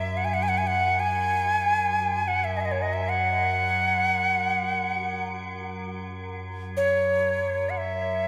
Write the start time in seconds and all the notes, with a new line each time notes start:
Already playing: F#2 F#3 E5
0.17 F#5
0.25 G#5
0.34 F#5
0.43 G#5
0.48 F#5
0.58 G#5
0.67 F#5
0.99 G#5
2.28 F#5
2.44 E5
2.57 D#5 E5
2.65 D#5
2.71 C#5
2.82 D#5
2.93 E5
3.09 F#5
6.77 C#5
7.69 F#5
7.77 E5
7.96 F#2 F#3